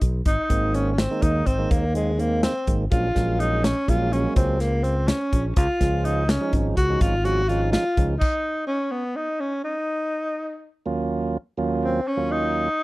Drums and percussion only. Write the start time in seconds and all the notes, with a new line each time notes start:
0.01 kick, closed hi-hat
0.25 kick, closed hi-hat
0.50 kick, closed hi-hat
0.74 closed hi-hat
0.98 snare, closed hi-hat
1.22 kick, closed hi-hat
1.46 kick, closed hi-hat
1.71 kick, closed hi-hat
1.95 closed hi-hat
2.19 closed hi-hat
2.43 snare, closed hi-hat
2.67 kick, closed hi-hat
2.91 kick, closed hi-hat
3.16 kick, snare, closed hi-hat
3.40 closed hi-hat
3.64 snare, closed hi-hat
3.88 kick, closed hi-hat
4.13 closed hi-hat
4.36 kick, closed hi-hat
4.60 snare, closed hi-hat
4.84 closed hi-hat
5.08 snare, closed hi-hat
5.33 kick, closed hi-hat
5.56 kick, closed hi-hat
5.81 kick, snare, closed hi-hat
6.05 closed hi-hat
6.29 snare, closed hi-hat
6.53 kick, closed hi-hat
6.77 kick, closed hi-hat
7.01 kick, closed hi-hat
7.25 closed hi-hat
7.49 closed hi-hat
7.73 snare, closed hi-hat
7.97 kick, closed hi-hat
8.21 kick, crash